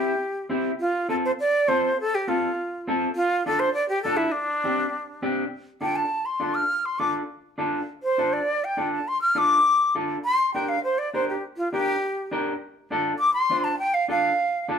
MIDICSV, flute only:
0, 0, Header, 1, 2, 480
1, 0, Start_track
1, 0, Key_signature, -1, "minor"
1, 0, Tempo, 295567
1, 1293, Time_signature, 4, 2, 24, 8
1, 24012, End_track
2, 0, Start_track
2, 0, Title_t, "Flute"
2, 0, Program_c, 0, 73
2, 0, Note_on_c, 0, 67, 82
2, 743, Note_off_c, 0, 67, 0
2, 1302, Note_on_c, 0, 65, 91
2, 1745, Note_off_c, 0, 65, 0
2, 1782, Note_on_c, 0, 69, 86
2, 1879, Note_off_c, 0, 69, 0
2, 2036, Note_on_c, 0, 72, 96
2, 2133, Note_off_c, 0, 72, 0
2, 2272, Note_on_c, 0, 74, 105
2, 2733, Note_on_c, 0, 72, 98
2, 2757, Note_off_c, 0, 74, 0
2, 3215, Note_off_c, 0, 72, 0
2, 3253, Note_on_c, 0, 69, 108
2, 3487, Note_on_c, 0, 67, 95
2, 3512, Note_off_c, 0, 69, 0
2, 3709, Note_on_c, 0, 65, 81
2, 3733, Note_off_c, 0, 67, 0
2, 4664, Note_off_c, 0, 65, 0
2, 5132, Note_on_c, 0, 65, 104
2, 5581, Note_off_c, 0, 65, 0
2, 5629, Note_on_c, 0, 69, 101
2, 5838, Note_on_c, 0, 72, 107
2, 5863, Note_off_c, 0, 69, 0
2, 6058, Note_off_c, 0, 72, 0
2, 6068, Note_on_c, 0, 74, 101
2, 6304, Note_off_c, 0, 74, 0
2, 6315, Note_on_c, 0, 67, 95
2, 6529, Note_off_c, 0, 67, 0
2, 6539, Note_on_c, 0, 69, 102
2, 6768, Note_on_c, 0, 64, 88
2, 6793, Note_off_c, 0, 69, 0
2, 7011, Note_on_c, 0, 62, 95
2, 7035, Note_off_c, 0, 64, 0
2, 8471, Note_off_c, 0, 62, 0
2, 9454, Note_on_c, 0, 79, 85
2, 9677, Note_on_c, 0, 81, 82
2, 9701, Note_off_c, 0, 79, 0
2, 10158, Note_on_c, 0, 84, 80
2, 10183, Note_off_c, 0, 81, 0
2, 10631, Note_on_c, 0, 89, 83
2, 10655, Note_off_c, 0, 84, 0
2, 11133, Note_on_c, 0, 84, 77
2, 11157, Note_off_c, 0, 89, 0
2, 11350, Note_on_c, 0, 86, 92
2, 11375, Note_off_c, 0, 84, 0
2, 11591, Note_off_c, 0, 86, 0
2, 13045, Note_on_c, 0, 72, 91
2, 13530, Note_on_c, 0, 74, 87
2, 13554, Note_off_c, 0, 72, 0
2, 14035, Note_on_c, 0, 79, 82
2, 14060, Note_off_c, 0, 74, 0
2, 14486, Note_off_c, 0, 79, 0
2, 14501, Note_on_c, 0, 81, 86
2, 14746, Note_on_c, 0, 84, 102
2, 14771, Note_off_c, 0, 81, 0
2, 14956, Note_off_c, 0, 84, 0
2, 14965, Note_on_c, 0, 89, 88
2, 15234, Note_on_c, 0, 86, 100
2, 15258, Note_off_c, 0, 89, 0
2, 16151, Note_off_c, 0, 86, 0
2, 16644, Note_on_c, 0, 84, 108
2, 17110, Note_off_c, 0, 84, 0
2, 17118, Note_on_c, 0, 79, 88
2, 17356, Note_on_c, 0, 77, 95
2, 17380, Note_off_c, 0, 79, 0
2, 17590, Note_off_c, 0, 77, 0
2, 17600, Note_on_c, 0, 72, 83
2, 17839, Note_on_c, 0, 74, 92
2, 17863, Note_off_c, 0, 72, 0
2, 18075, Note_off_c, 0, 74, 0
2, 18088, Note_on_c, 0, 72, 83
2, 18320, Note_off_c, 0, 72, 0
2, 18333, Note_on_c, 0, 67, 72
2, 18562, Note_off_c, 0, 67, 0
2, 18793, Note_on_c, 0, 65, 82
2, 19020, Note_off_c, 0, 65, 0
2, 19030, Note_on_c, 0, 67, 109
2, 19969, Note_off_c, 0, 67, 0
2, 21420, Note_on_c, 0, 86, 90
2, 21650, Note_off_c, 0, 86, 0
2, 21660, Note_on_c, 0, 84, 101
2, 22153, Note_on_c, 0, 81, 85
2, 22177, Note_off_c, 0, 84, 0
2, 22384, Note_off_c, 0, 81, 0
2, 22394, Note_on_c, 0, 79, 99
2, 22638, Note_on_c, 0, 77, 92
2, 22662, Note_off_c, 0, 79, 0
2, 22875, Note_off_c, 0, 77, 0
2, 22901, Note_on_c, 0, 77, 99
2, 23825, Note_off_c, 0, 77, 0
2, 24012, End_track
0, 0, End_of_file